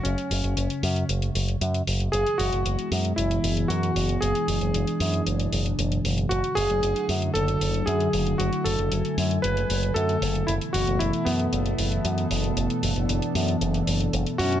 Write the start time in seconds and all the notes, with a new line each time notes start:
Already playing: C#3 F#3 A3 F#4 C#5
0.03 F#1 C#4, closed hi-hat
0.18 closed hi-hat
0.31 F#1, open hi-hat
0.44 F#1, closed hi-hat
0.57 F#1, closed hi-hat
0.70 closed hi-hat
0.83 F#2, open hi-hat
0.96 closed hi-hat
1.09 F#1, closed hi-hat
1.22 closed hi-hat
1.35 F#1, open hi-hat
1.48 closed hi-hat
1.61 F#2, closed hi-hat
1.74 closed hi-hat
1.87 F#1, open hi-hat
2.00 closed hi-hat
2.12 F#1 B2 E3 G#3 E4 G#4, closed hi-hat
2.27 closed hi-hat
2.38 F#1 F#4, open hi-hat
2.52 F#1, closed hi-hat
2.66 F#1, closed hi-hat
2.79 closed hi-hat
2.91 F#2, open hi-hat
3.05 closed hi-hat
3.16 F#1 E4, closed hi-hat
3.31 closed hi-hat
3.44 F#1, open hi-hat
3.57 closed hi-hat
3.68 F#2 F#4, closed hi-hat
3.83 closed hi-hat
3.96 F#1, open hi-hat
4.09 closed hi-hat
4.21 F#1 D4 G#4, closed hi-hat
4.35 closed hi-hat
4.48 F#1, open hi-hat
4.61 F#1, closed hi-hat
4.74 F#1, closed hi-hat
4.87 closed hi-hat
5.00 F#2, open hi-hat
5.14 closed hi-hat
5.26 F#1, closed hi-hat
5.40 closed hi-hat
5.53 F#1, open hi-hat
5.66 closed hi-hat
5.79 F#1, closed hi-hat
5.92 closed hi-hat
6.05 F#1, open hi-hat
6.18 closed hi-hat
6.29 F#1 D3 F#3 A3 E4 F#4, closed hi-hat
6.44 closed hi-hat
6.55 F#1 G#4, open hi-hat
6.70 F#1, closed hi-hat
6.83 F#1, closed hi-hat
6.96 closed hi-hat
7.09 F#2, open hi-hat
7.22 closed hi-hat
7.34 F#1 A4, closed hi-hat
7.48 closed hi-hat
7.61 F#1, open hi-hat
7.74 closed hi-hat
7.86 F#2 G#4, closed hi-hat
8.00 closed hi-hat
8.13 F#1, open hi-hat
8.27 closed hi-hat
8.38 F#1 F#4 G#5, closed hi-hat
8.53 closed hi-hat
8.64 F#1 A4, open hi-hat
8.78 F#1, closed hi-hat
8.91 F#1, closed hi-hat
9.05 closed hi-hat
9.18 F#2, open hi-hat
9.31 closed hi-hat
9.42 F#1 B4, closed hi-hat
9.57 closed hi-hat
9.70 F#1, open hi-hat
9.83 closed hi-hat
9.94 F#2 A4, closed hi-hat
10.09 closed hi-hat
10.22 F#1, open hi-hat
10.35 closed hi-hat
10.47 F#1 B2 E3 E4 A4, closed hi-hat
10.61 closed hi-hat
10.73 F#1 F#4, open hi-hat
10.87 F#1, closed hi-hat
10.99 F#1 E4, closed hi-hat
11.13 closed hi-hat
11.25 F#2 B3, open hi-hat
11.40 closed hi-hat
11.52 F#1, closed hi-hat
11.66 closed hi-hat
11.78 F#1, open hi-hat
11.92 closed hi-hat
12.05 F#2, closed hi-hat
12.18 closed hi-hat
12.31 F#1, open hi-hat
12.44 closed hi-hat
12.57 F#1 D4, closed hi-hat
12.70 closed hi-hat
12.83 F#1, open hi-hat
12.96 F#1, closed hi-hat
13.09 F#1, closed hi-hat
13.22 closed hi-hat
13.35 F#2, open hi-hat
13.48 closed hi-hat
13.61 F#1, closed hi-hat
13.74 closed hi-hat
13.87 F#1, open hi-hat
14.01 closed hi-hat
14.13 F#1, closed hi-hat
14.27 closed hi-hat
14.38 F#2 C#4 F#4, open hi-hat
14.52 closed hi-hat